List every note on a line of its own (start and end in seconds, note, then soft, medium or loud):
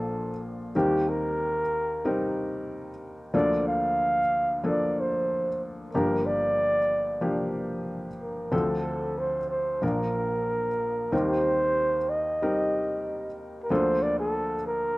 0.00 0.71 A#1 soft
0.00 0.71 A#2 soft
0.00 0.30 F3 soft
0.00 0.30 A#3 soft
0.00 0.31 D4 soft
0.00 0.30 F4 medium
0.00 0.43 A4 medium
0.75 3.31 D#2 medium
0.75 3.31 D#3 soft
0.75 1.60 G3 medium
0.75 1.61 C4 medium
0.75 1.60 D#4 soft
0.75 1.11 G4 medium
0.75 1.61 A#4 medium
1.09 2.38 A#4 medium
2.05 2.90 G3 medium
2.05 2.90 C4 medium
2.05 2.90 D#4 medium
2.05 2.90 A#4 medium
3.34 5.89 D2 medium
3.34 5.89 D3 medium
3.34 4.19 F3 medium
3.34 4.19 A#3 medium
3.34 4.19 D4 medium
3.34 4.19 A4 medium
3.34 3.65 D5 medium
3.68 4.60 F5 medium
4.64 5.48 F3 medium
4.64 5.48 A#3 medium
4.64 5.49 D4 medium
4.64 5.49 A4 medium
4.68 5.02 D5 medium
5.00 5.62 C5 medium
5.93 8.50 G1 soft
5.93 8.50 G2 soft
5.93 6.78 F3 medium
5.93 6.78 A#3 medium
5.93 6.78 D4 medium
5.93 6.78 G4 medium
5.93 6.27 A#4 medium
6.26 7.55 D5 medium
7.21 8.07 F3 medium
7.21 8.08 A#3 medium
7.21 8.08 D4 medium
7.21 8.08 G4 medium
8.20 8.55 A#4 medium
8.52 9.79 D2 medium
8.52 9.79 D3 soft
8.52 9.38 F3 medium
8.52 9.38 C4 medium
8.52 9.38 D4 medium
8.52 9.38 A4 medium
8.52 9.20 A4 medium
9.18 9.49 C5 medium
9.50 9.86 C5 medium
9.82 11.09 A#1 soft
9.82 11.08 A#2 soft
9.82 10.68 F3 medium
9.82 10.68 A#3 soft
9.82 10.68 D4 soft
9.82 10.68 A#4 medium
9.82 11.13 A#4 medium
11.12 13.66 D#2 medium
11.12 13.66 D#3 medium
11.12 11.97 G3 medium
11.12 11.97 C4 medium
11.12 11.97 D#4 medium
11.12 11.97 A#4 medium
11.12 12.11 C5 medium
12.09 13.38 D#5 medium
12.42 13.26 G3 medium
12.42 13.27 C4 soft
12.42 13.27 D#4 medium
12.42 13.27 A#4 medium
13.63 13.73 A#4 medium
13.70 14.98 D2 medium
13.70 14.98 D3 medium
13.70 14.54 F3 medium
13.70 14.55 A#3 medium
13.70 14.55 D4 soft
13.70 14.55 A4 medium
13.70 14.04 C5 medium
14.02 14.18 D5 medium
14.19 14.64 A4 medium
14.67 14.98 A#4 medium